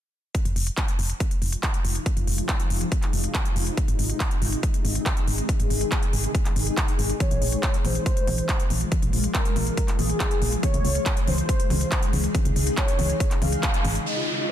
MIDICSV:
0, 0, Header, 1, 7, 480
1, 0, Start_track
1, 0, Key_signature, -4, "minor"
1, 0, Tempo, 428571
1, 388, Time_signature, 4, 2, 24, 8
1, 16259, End_track
2, 0, Start_track
2, 0, Title_t, "Soft synth lead"
2, 0, Program_c, 0, 80
2, 8067, Note_on_c, 0, 73, 96
2, 8692, Note_off_c, 0, 73, 0
2, 8788, Note_on_c, 0, 72, 100
2, 9652, Note_off_c, 0, 72, 0
2, 10468, Note_on_c, 0, 70, 94
2, 11092, Note_off_c, 0, 70, 0
2, 11188, Note_on_c, 0, 68, 94
2, 11812, Note_off_c, 0, 68, 0
2, 11908, Note_on_c, 0, 73, 101
2, 12532, Note_off_c, 0, 73, 0
2, 12628, Note_on_c, 0, 72, 95
2, 13492, Note_off_c, 0, 72, 0
2, 14308, Note_on_c, 0, 73, 99
2, 14932, Note_off_c, 0, 73, 0
2, 15029, Note_on_c, 0, 77, 92
2, 15652, Note_off_c, 0, 77, 0
2, 15748, Note_on_c, 0, 75, 90
2, 16259, Note_off_c, 0, 75, 0
2, 16259, End_track
3, 0, Start_track
3, 0, Title_t, "Supersaw synth"
3, 0, Program_c, 1, 81
3, 15748, Note_on_c, 1, 75, 91
3, 15829, Note_off_c, 1, 75, 0
3, 15868, Note_on_c, 1, 65, 60
3, 15949, Note_off_c, 1, 65, 0
3, 15988, Note_on_c, 1, 65, 60
3, 16069, Note_off_c, 1, 65, 0
3, 16108, Note_on_c, 1, 65, 62
3, 16189, Note_off_c, 1, 65, 0
3, 16259, End_track
4, 0, Start_track
4, 0, Title_t, "Ambient pad"
4, 0, Program_c, 2, 92
4, 388, Note_on_c, 2, 53, 70
4, 388, Note_on_c, 2, 56, 69
4, 388, Note_on_c, 2, 63, 74
4, 389, Note_on_c, 2, 48, 76
4, 389, Note_on_c, 2, 65, 82
4, 4190, Note_off_c, 2, 53, 0
4, 4190, Note_off_c, 2, 56, 0
4, 4190, Note_off_c, 2, 65, 0
4, 4228, Note_on_c, 2, 51, 73
4, 4228, Note_on_c, 2, 56, 70
4, 4228, Note_on_c, 2, 68, 90
4, 8023, Note_off_c, 2, 63, 0
4, 8024, Note_off_c, 2, 48, 0
4, 8030, Note_off_c, 2, 51, 0
4, 8030, Note_off_c, 2, 68, 0
4, 8068, Note_on_c, 2, 49, 77
4, 8068, Note_on_c, 2, 53, 72
4, 8068, Note_on_c, 2, 65, 84
4, 8069, Note_on_c, 2, 58, 72
4, 11870, Note_off_c, 2, 53, 0
4, 11870, Note_off_c, 2, 58, 0
4, 11870, Note_off_c, 2, 65, 0
4, 11908, Note_on_c, 2, 63, 73
4, 11909, Note_on_c, 2, 51, 71
4, 11909, Note_on_c, 2, 68, 84
4, 15703, Note_off_c, 2, 49, 0
4, 15703, Note_off_c, 2, 56, 0
4, 15710, Note_off_c, 2, 51, 0
4, 15710, Note_off_c, 2, 63, 0
4, 15710, Note_off_c, 2, 68, 0
4, 16259, End_track
5, 0, Start_track
5, 0, Title_t, "FM bass"
5, 0, Program_c, 3, 39
5, 508, Note_on_c, 3, 29, 92
5, 587, Note_off_c, 3, 29, 0
5, 627, Note_on_c, 3, 29, 81
5, 786, Note_off_c, 3, 29, 0
5, 1108, Note_on_c, 3, 29, 85
5, 1266, Note_off_c, 3, 29, 0
5, 1588, Note_on_c, 3, 29, 84
5, 1746, Note_off_c, 3, 29, 0
5, 2068, Note_on_c, 3, 29, 83
5, 2226, Note_off_c, 3, 29, 0
5, 2428, Note_on_c, 3, 29, 98
5, 2507, Note_off_c, 3, 29, 0
5, 2548, Note_on_c, 3, 29, 86
5, 2706, Note_off_c, 3, 29, 0
5, 3028, Note_on_c, 3, 29, 85
5, 3186, Note_off_c, 3, 29, 0
5, 3508, Note_on_c, 3, 29, 84
5, 3666, Note_off_c, 3, 29, 0
5, 3987, Note_on_c, 3, 29, 82
5, 4146, Note_off_c, 3, 29, 0
5, 4348, Note_on_c, 3, 32, 95
5, 4427, Note_off_c, 3, 32, 0
5, 4468, Note_on_c, 3, 32, 86
5, 4626, Note_off_c, 3, 32, 0
5, 4947, Note_on_c, 3, 32, 86
5, 5106, Note_off_c, 3, 32, 0
5, 5427, Note_on_c, 3, 32, 89
5, 5586, Note_off_c, 3, 32, 0
5, 5908, Note_on_c, 3, 32, 84
5, 6066, Note_off_c, 3, 32, 0
5, 6268, Note_on_c, 3, 32, 96
5, 6347, Note_off_c, 3, 32, 0
5, 6388, Note_on_c, 3, 32, 87
5, 6546, Note_off_c, 3, 32, 0
5, 6868, Note_on_c, 3, 32, 88
5, 7026, Note_off_c, 3, 32, 0
5, 7348, Note_on_c, 3, 32, 87
5, 7506, Note_off_c, 3, 32, 0
5, 7829, Note_on_c, 3, 32, 87
5, 7986, Note_off_c, 3, 32, 0
5, 8188, Note_on_c, 3, 34, 94
5, 8267, Note_off_c, 3, 34, 0
5, 8307, Note_on_c, 3, 34, 85
5, 8466, Note_off_c, 3, 34, 0
5, 8787, Note_on_c, 3, 34, 89
5, 8946, Note_off_c, 3, 34, 0
5, 9267, Note_on_c, 3, 34, 86
5, 9426, Note_off_c, 3, 34, 0
5, 9747, Note_on_c, 3, 34, 83
5, 9906, Note_off_c, 3, 34, 0
5, 10107, Note_on_c, 3, 34, 92
5, 10187, Note_off_c, 3, 34, 0
5, 10227, Note_on_c, 3, 34, 87
5, 10386, Note_off_c, 3, 34, 0
5, 10707, Note_on_c, 3, 34, 88
5, 10866, Note_off_c, 3, 34, 0
5, 11187, Note_on_c, 3, 34, 88
5, 11345, Note_off_c, 3, 34, 0
5, 11667, Note_on_c, 3, 34, 85
5, 11826, Note_off_c, 3, 34, 0
5, 12027, Note_on_c, 3, 37, 98
5, 12107, Note_off_c, 3, 37, 0
5, 12148, Note_on_c, 3, 37, 87
5, 12306, Note_off_c, 3, 37, 0
5, 12628, Note_on_c, 3, 37, 90
5, 12786, Note_off_c, 3, 37, 0
5, 13107, Note_on_c, 3, 37, 87
5, 13266, Note_off_c, 3, 37, 0
5, 13588, Note_on_c, 3, 37, 88
5, 13746, Note_off_c, 3, 37, 0
5, 13947, Note_on_c, 3, 37, 98
5, 14027, Note_off_c, 3, 37, 0
5, 14068, Note_on_c, 3, 37, 84
5, 14226, Note_off_c, 3, 37, 0
5, 14548, Note_on_c, 3, 37, 90
5, 14706, Note_off_c, 3, 37, 0
5, 15028, Note_on_c, 3, 37, 79
5, 15186, Note_off_c, 3, 37, 0
5, 15508, Note_on_c, 3, 32, 96
5, 15666, Note_off_c, 3, 32, 0
5, 16259, End_track
6, 0, Start_track
6, 0, Title_t, "Downlifter"
6, 0, Program_c, 4, 103
6, 15748, Note_on_c, 4, 60, 66
6, 16259, Note_off_c, 4, 60, 0
6, 16259, End_track
7, 0, Start_track
7, 0, Title_t, "Drums"
7, 388, Note_on_c, 9, 36, 103
7, 388, Note_on_c, 9, 42, 82
7, 500, Note_off_c, 9, 36, 0
7, 500, Note_off_c, 9, 42, 0
7, 508, Note_on_c, 9, 42, 52
7, 620, Note_off_c, 9, 42, 0
7, 628, Note_on_c, 9, 46, 98
7, 740, Note_off_c, 9, 46, 0
7, 748, Note_on_c, 9, 42, 51
7, 860, Note_off_c, 9, 42, 0
7, 868, Note_on_c, 9, 36, 114
7, 868, Note_on_c, 9, 39, 111
7, 868, Note_on_c, 9, 42, 75
7, 980, Note_off_c, 9, 36, 0
7, 980, Note_off_c, 9, 39, 0
7, 980, Note_off_c, 9, 42, 0
7, 988, Note_on_c, 9, 42, 51
7, 1100, Note_off_c, 9, 42, 0
7, 1108, Note_on_c, 9, 46, 99
7, 1220, Note_off_c, 9, 46, 0
7, 1228, Note_on_c, 9, 42, 51
7, 1340, Note_off_c, 9, 42, 0
7, 1348, Note_on_c, 9, 36, 110
7, 1348, Note_on_c, 9, 42, 75
7, 1460, Note_off_c, 9, 36, 0
7, 1460, Note_off_c, 9, 42, 0
7, 1468, Note_on_c, 9, 42, 53
7, 1580, Note_off_c, 9, 42, 0
7, 1588, Note_on_c, 9, 46, 99
7, 1700, Note_off_c, 9, 46, 0
7, 1708, Note_on_c, 9, 42, 53
7, 1820, Note_off_c, 9, 42, 0
7, 1828, Note_on_c, 9, 36, 108
7, 1828, Note_on_c, 9, 39, 115
7, 1828, Note_on_c, 9, 42, 79
7, 1940, Note_off_c, 9, 36, 0
7, 1940, Note_off_c, 9, 39, 0
7, 1940, Note_off_c, 9, 42, 0
7, 1948, Note_on_c, 9, 42, 54
7, 2060, Note_off_c, 9, 42, 0
7, 2068, Note_on_c, 9, 46, 99
7, 2180, Note_off_c, 9, 46, 0
7, 2188, Note_on_c, 9, 42, 53
7, 2300, Note_off_c, 9, 42, 0
7, 2308, Note_on_c, 9, 36, 108
7, 2308, Note_on_c, 9, 42, 75
7, 2420, Note_off_c, 9, 36, 0
7, 2420, Note_off_c, 9, 42, 0
7, 2427, Note_on_c, 9, 42, 50
7, 2539, Note_off_c, 9, 42, 0
7, 2547, Note_on_c, 9, 46, 103
7, 2659, Note_off_c, 9, 46, 0
7, 2667, Note_on_c, 9, 42, 50
7, 2779, Note_off_c, 9, 42, 0
7, 2787, Note_on_c, 9, 39, 115
7, 2787, Note_on_c, 9, 42, 73
7, 2788, Note_on_c, 9, 36, 119
7, 2899, Note_off_c, 9, 39, 0
7, 2899, Note_off_c, 9, 42, 0
7, 2900, Note_off_c, 9, 36, 0
7, 2907, Note_on_c, 9, 42, 50
7, 3019, Note_off_c, 9, 42, 0
7, 3027, Note_on_c, 9, 46, 105
7, 3139, Note_off_c, 9, 46, 0
7, 3148, Note_on_c, 9, 42, 51
7, 3260, Note_off_c, 9, 42, 0
7, 3267, Note_on_c, 9, 42, 74
7, 3268, Note_on_c, 9, 36, 116
7, 3379, Note_off_c, 9, 42, 0
7, 3380, Note_off_c, 9, 36, 0
7, 3388, Note_on_c, 9, 39, 35
7, 3388, Note_on_c, 9, 42, 49
7, 3500, Note_off_c, 9, 39, 0
7, 3500, Note_off_c, 9, 42, 0
7, 3508, Note_on_c, 9, 46, 104
7, 3620, Note_off_c, 9, 46, 0
7, 3628, Note_on_c, 9, 42, 50
7, 3740, Note_off_c, 9, 42, 0
7, 3748, Note_on_c, 9, 36, 118
7, 3748, Note_on_c, 9, 39, 120
7, 3748, Note_on_c, 9, 42, 72
7, 3860, Note_off_c, 9, 36, 0
7, 3860, Note_off_c, 9, 39, 0
7, 3860, Note_off_c, 9, 42, 0
7, 3868, Note_on_c, 9, 42, 50
7, 3980, Note_off_c, 9, 42, 0
7, 3988, Note_on_c, 9, 46, 101
7, 4100, Note_off_c, 9, 46, 0
7, 4108, Note_on_c, 9, 42, 50
7, 4220, Note_off_c, 9, 42, 0
7, 4228, Note_on_c, 9, 36, 118
7, 4228, Note_on_c, 9, 42, 72
7, 4340, Note_off_c, 9, 36, 0
7, 4340, Note_off_c, 9, 42, 0
7, 4348, Note_on_c, 9, 42, 50
7, 4460, Note_off_c, 9, 42, 0
7, 4468, Note_on_c, 9, 46, 104
7, 4580, Note_off_c, 9, 46, 0
7, 4588, Note_on_c, 9, 42, 48
7, 4700, Note_off_c, 9, 42, 0
7, 4708, Note_on_c, 9, 36, 121
7, 4708, Note_on_c, 9, 39, 110
7, 4708, Note_on_c, 9, 42, 74
7, 4820, Note_off_c, 9, 36, 0
7, 4820, Note_off_c, 9, 39, 0
7, 4820, Note_off_c, 9, 42, 0
7, 4828, Note_on_c, 9, 42, 47
7, 4940, Note_off_c, 9, 42, 0
7, 4948, Note_on_c, 9, 46, 105
7, 5060, Note_off_c, 9, 46, 0
7, 5069, Note_on_c, 9, 42, 49
7, 5181, Note_off_c, 9, 42, 0
7, 5188, Note_on_c, 9, 36, 114
7, 5189, Note_on_c, 9, 42, 73
7, 5300, Note_off_c, 9, 36, 0
7, 5301, Note_off_c, 9, 42, 0
7, 5309, Note_on_c, 9, 42, 48
7, 5421, Note_off_c, 9, 42, 0
7, 5429, Note_on_c, 9, 46, 104
7, 5541, Note_off_c, 9, 46, 0
7, 5549, Note_on_c, 9, 42, 51
7, 5661, Note_off_c, 9, 42, 0
7, 5668, Note_on_c, 9, 36, 118
7, 5669, Note_on_c, 9, 39, 112
7, 5669, Note_on_c, 9, 42, 74
7, 5780, Note_off_c, 9, 36, 0
7, 5781, Note_off_c, 9, 39, 0
7, 5781, Note_off_c, 9, 42, 0
7, 5789, Note_on_c, 9, 42, 47
7, 5901, Note_off_c, 9, 42, 0
7, 5908, Note_on_c, 9, 46, 104
7, 6020, Note_off_c, 9, 46, 0
7, 6028, Note_on_c, 9, 42, 50
7, 6140, Note_off_c, 9, 42, 0
7, 6147, Note_on_c, 9, 36, 109
7, 6148, Note_on_c, 9, 42, 73
7, 6259, Note_off_c, 9, 36, 0
7, 6260, Note_off_c, 9, 42, 0
7, 6268, Note_on_c, 9, 42, 50
7, 6380, Note_off_c, 9, 42, 0
7, 6388, Note_on_c, 9, 46, 107
7, 6500, Note_off_c, 9, 46, 0
7, 6508, Note_on_c, 9, 42, 47
7, 6620, Note_off_c, 9, 42, 0
7, 6628, Note_on_c, 9, 36, 118
7, 6628, Note_on_c, 9, 39, 109
7, 6628, Note_on_c, 9, 42, 70
7, 6740, Note_off_c, 9, 36, 0
7, 6740, Note_off_c, 9, 39, 0
7, 6740, Note_off_c, 9, 42, 0
7, 6748, Note_on_c, 9, 42, 47
7, 6860, Note_off_c, 9, 42, 0
7, 6868, Note_on_c, 9, 46, 107
7, 6980, Note_off_c, 9, 46, 0
7, 6988, Note_on_c, 9, 42, 50
7, 7100, Note_off_c, 9, 42, 0
7, 7108, Note_on_c, 9, 36, 115
7, 7108, Note_on_c, 9, 42, 75
7, 7220, Note_off_c, 9, 36, 0
7, 7220, Note_off_c, 9, 42, 0
7, 7229, Note_on_c, 9, 39, 34
7, 7229, Note_on_c, 9, 42, 46
7, 7341, Note_off_c, 9, 39, 0
7, 7341, Note_off_c, 9, 42, 0
7, 7348, Note_on_c, 9, 46, 110
7, 7460, Note_off_c, 9, 46, 0
7, 7468, Note_on_c, 9, 42, 48
7, 7580, Note_off_c, 9, 42, 0
7, 7588, Note_on_c, 9, 36, 113
7, 7588, Note_on_c, 9, 39, 116
7, 7588, Note_on_c, 9, 42, 73
7, 7700, Note_off_c, 9, 36, 0
7, 7700, Note_off_c, 9, 39, 0
7, 7700, Note_off_c, 9, 42, 0
7, 7708, Note_on_c, 9, 42, 47
7, 7820, Note_off_c, 9, 42, 0
7, 7828, Note_on_c, 9, 46, 102
7, 7940, Note_off_c, 9, 46, 0
7, 7948, Note_on_c, 9, 42, 46
7, 8060, Note_off_c, 9, 42, 0
7, 8067, Note_on_c, 9, 42, 76
7, 8067, Note_on_c, 9, 63, 78
7, 8068, Note_on_c, 9, 36, 115
7, 8179, Note_off_c, 9, 42, 0
7, 8179, Note_off_c, 9, 63, 0
7, 8180, Note_off_c, 9, 36, 0
7, 8187, Note_on_c, 9, 42, 49
7, 8299, Note_off_c, 9, 42, 0
7, 8307, Note_on_c, 9, 46, 105
7, 8419, Note_off_c, 9, 46, 0
7, 8427, Note_on_c, 9, 42, 47
7, 8539, Note_off_c, 9, 42, 0
7, 8547, Note_on_c, 9, 39, 105
7, 8547, Note_on_c, 9, 42, 72
7, 8548, Note_on_c, 9, 36, 116
7, 8659, Note_off_c, 9, 39, 0
7, 8659, Note_off_c, 9, 42, 0
7, 8660, Note_off_c, 9, 36, 0
7, 8668, Note_on_c, 9, 42, 49
7, 8780, Note_off_c, 9, 42, 0
7, 8788, Note_on_c, 9, 46, 102
7, 8788, Note_on_c, 9, 63, 75
7, 8900, Note_off_c, 9, 46, 0
7, 8900, Note_off_c, 9, 63, 0
7, 8908, Note_on_c, 9, 42, 50
7, 9020, Note_off_c, 9, 42, 0
7, 9028, Note_on_c, 9, 36, 112
7, 9028, Note_on_c, 9, 42, 72
7, 9140, Note_off_c, 9, 36, 0
7, 9140, Note_off_c, 9, 42, 0
7, 9148, Note_on_c, 9, 42, 50
7, 9260, Note_off_c, 9, 42, 0
7, 9268, Note_on_c, 9, 46, 107
7, 9268, Note_on_c, 9, 63, 81
7, 9380, Note_off_c, 9, 46, 0
7, 9380, Note_off_c, 9, 63, 0
7, 9388, Note_on_c, 9, 42, 49
7, 9500, Note_off_c, 9, 42, 0
7, 9507, Note_on_c, 9, 39, 111
7, 9507, Note_on_c, 9, 42, 73
7, 9508, Note_on_c, 9, 36, 113
7, 9619, Note_off_c, 9, 39, 0
7, 9619, Note_off_c, 9, 42, 0
7, 9620, Note_off_c, 9, 36, 0
7, 9627, Note_on_c, 9, 42, 49
7, 9739, Note_off_c, 9, 42, 0
7, 9747, Note_on_c, 9, 46, 102
7, 9747, Note_on_c, 9, 63, 62
7, 9859, Note_off_c, 9, 46, 0
7, 9859, Note_off_c, 9, 63, 0
7, 9867, Note_on_c, 9, 42, 49
7, 9979, Note_off_c, 9, 42, 0
7, 9987, Note_on_c, 9, 42, 76
7, 9987, Note_on_c, 9, 63, 79
7, 9988, Note_on_c, 9, 36, 111
7, 10099, Note_off_c, 9, 42, 0
7, 10099, Note_off_c, 9, 63, 0
7, 10100, Note_off_c, 9, 36, 0
7, 10107, Note_on_c, 9, 42, 50
7, 10219, Note_off_c, 9, 42, 0
7, 10227, Note_on_c, 9, 46, 99
7, 10339, Note_off_c, 9, 46, 0
7, 10348, Note_on_c, 9, 42, 51
7, 10460, Note_off_c, 9, 42, 0
7, 10467, Note_on_c, 9, 39, 108
7, 10467, Note_on_c, 9, 42, 76
7, 10468, Note_on_c, 9, 36, 113
7, 10579, Note_off_c, 9, 39, 0
7, 10579, Note_off_c, 9, 42, 0
7, 10580, Note_off_c, 9, 36, 0
7, 10587, Note_on_c, 9, 42, 50
7, 10699, Note_off_c, 9, 42, 0
7, 10708, Note_on_c, 9, 46, 97
7, 10708, Note_on_c, 9, 63, 78
7, 10820, Note_off_c, 9, 46, 0
7, 10820, Note_off_c, 9, 63, 0
7, 10827, Note_on_c, 9, 42, 53
7, 10939, Note_off_c, 9, 42, 0
7, 10947, Note_on_c, 9, 36, 105
7, 10947, Note_on_c, 9, 42, 80
7, 11059, Note_off_c, 9, 36, 0
7, 11059, Note_off_c, 9, 42, 0
7, 11068, Note_on_c, 9, 39, 35
7, 11068, Note_on_c, 9, 42, 51
7, 11180, Note_off_c, 9, 39, 0
7, 11180, Note_off_c, 9, 42, 0
7, 11187, Note_on_c, 9, 46, 100
7, 11187, Note_on_c, 9, 63, 77
7, 11299, Note_off_c, 9, 46, 0
7, 11299, Note_off_c, 9, 63, 0
7, 11307, Note_on_c, 9, 42, 52
7, 11419, Note_off_c, 9, 42, 0
7, 11427, Note_on_c, 9, 36, 108
7, 11427, Note_on_c, 9, 39, 115
7, 11427, Note_on_c, 9, 42, 76
7, 11539, Note_off_c, 9, 36, 0
7, 11539, Note_off_c, 9, 39, 0
7, 11539, Note_off_c, 9, 42, 0
7, 11547, Note_on_c, 9, 42, 52
7, 11659, Note_off_c, 9, 42, 0
7, 11667, Note_on_c, 9, 46, 101
7, 11779, Note_off_c, 9, 46, 0
7, 11787, Note_on_c, 9, 42, 50
7, 11899, Note_off_c, 9, 42, 0
7, 11908, Note_on_c, 9, 36, 106
7, 11908, Note_on_c, 9, 42, 81
7, 11908, Note_on_c, 9, 63, 78
7, 12020, Note_off_c, 9, 36, 0
7, 12020, Note_off_c, 9, 42, 0
7, 12020, Note_off_c, 9, 63, 0
7, 12028, Note_on_c, 9, 42, 54
7, 12140, Note_off_c, 9, 42, 0
7, 12148, Note_on_c, 9, 46, 94
7, 12260, Note_off_c, 9, 46, 0
7, 12268, Note_on_c, 9, 42, 55
7, 12380, Note_off_c, 9, 42, 0
7, 12388, Note_on_c, 9, 36, 111
7, 12388, Note_on_c, 9, 39, 113
7, 12388, Note_on_c, 9, 42, 76
7, 12500, Note_off_c, 9, 36, 0
7, 12500, Note_off_c, 9, 39, 0
7, 12500, Note_off_c, 9, 42, 0
7, 12508, Note_on_c, 9, 42, 53
7, 12620, Note_off_c, 9, 42, 0
7, 12628, Note_on_c, 9, 46, 98
7, 12628, Note_on_c, 9, 63, 74
7, 12740, Note_off_c, 9, 46, 0
7, 12740, Note_off_c, 9, 63, 0
7, 12748, Note_on_c, 9, 42, 53
7, 12860, Note_off_c, 9, 42, 0
7, 12868, Note_on_c, 9, 36, 105
7, 12868, Note_on_c, 9, 42, 80
7, 12980, Note_off_c, 9, 36, 0
7, 12980, Note_off_c, 9, 42, 0
7, 12988, Note_on_c, 9, 42, 53
7, 13100, Note_off_c, 9, 42, 0
7, 13108, Note_on_c, 9, 46, 94
7, 13108, Note_on_c, 9, 63, 80
7, 13220, Note_off_c, 9, 46, 0
7, 13220, Note_off_c, 9, 63, 0
7, 13228, Note_on_c, 9, 42, 55
7, 13340, Note_off_c, 9, 42, 0
7, 13347, Note_on_c, 9, 39, 116
7, 13347, Note_on_c, 9, 42, 81
7, 13348, Note_on_c, 9, 36, 109
7, 13459, Note_off_c, 9, 39, 0
7, 13459, Note_off_c, 9, 42, 0
7, 13460, Note_off_c, 9, 36, 0
7, 13468, Note_on_c, 9, 42, 53
7, 13580, Note_off_c, 9, 42, 0
7, 13588, Note_on_c, 9, 46, 101
7, 13588, Note_on_c, 9, 63, 60
7, 13700, Note_off_c, 9, 46, 0
7, 13700, Note_off_c, 9, 63, 0
7, 13708, Note_on_c, 9, 42, 51
7, 13820, Note_off_c, 9, 42, 0
7, 13828, Note_on_c, 9, 36, 111
7, 13828, Note_on_c, 9, 42, 80
7, 13828, Note_on_c, 9, 63, 72
7, 13940, Note_off_c, 9, 36, 0
7, 13940, Note_off_c, 9, 42, 0
7, 13940, Note_off_c, 9, 63, 0
7, 13948, Note_on_c, 9, 42, 55
7, 14060, Note_off_c, 9, 42, 0
7, 14068, Note_on_c, 9, 46, 104
7, 14180, Note_off_c, 9, 46, 0
7, 14188, Note_on_c, 9, 42, 55
7, 14300, Note_off_c, 9, 42, 0
7, 14308, Note_on_c, 9, 36, 115
7, 14308, Note_on_c, 9, 39, 115
7, 14308, Note_on_c, 9, 42, 78
7, 14420, Note_off_c, 9, 36, 0
7, 14420, Note_off_c, 9, 39, 0
7, 14420, Note_off_c, 9, 42, 0
7, 14428, Note_on_c, 9, 42, 55
7, 14540, Note_off_c, 9, 42, 0
7, 14548, Note_on_c, 9, 46, 96
7, 14548, Note_on_c, 9, 63, 77
7, 14660, Note_off_c, 9, 46, 0
7, 14660, Note_off_c, 9, 63, 0
7, 14668, Note_on_c, 9, 42, 57
7, 14780, Note_off_c, 9, 42, 0
7, 14788, Note_on_c, 9, 36, 112
7, 14788, Note_on_c, 9, 42, 82
7, 14900, Note_off_c, 9, 36, 0
7, 14900, Note_off_c, 9, 42, 0
7, 14908, Note_on_c, 9, 39, 35
7, 14908, Note_on_c, 9, 42, 57
7, 15020, Note_off_c, 9, 39, 0
7, 15020, Note_off_c, 9, 42, 0
7, 15027, Note_on_c, 9, 46, 99
7, 15027, Note_on_c, 9, 63, 78
7, 15139, Note_off_c, 9, 46, 0
7, 15139, Note_off_c, 9, 63, 0
7, 15148, Note_on_c, 9, 42, 55
7, 15260, Note_off_c, 9, 42, 0
7, 15268, Note_on_c, 9, 36, 108
7, 15268, Note_on_c, 9, 39, 122
7, 15268, Note_on_c, 9, 42, 78
7, 15380, Note_off_c, 9, 36, 0
7, 15380, Note_off_c, 9, 39, 0
7, 15380, Note_off_c, 9, 42, 0
7, 15388, Note_on_c, 9, 42, 56
7, 15500, Note_off_c, 9, 42, 0
7, 15507, Note_on_c, 9, 46, 101
7, 15507, Note_on_c, 9, 63, 58
7, 15619, Note_off_c, 9, 46, 0
7, 15619, Note_off_c, 9, 63, 0
7, 15628, Note_on_c, 9, 42, 54
7, 15740, Note_off_c, 9, 42, 0
7, 16259, End_track
0, 0, End_of_file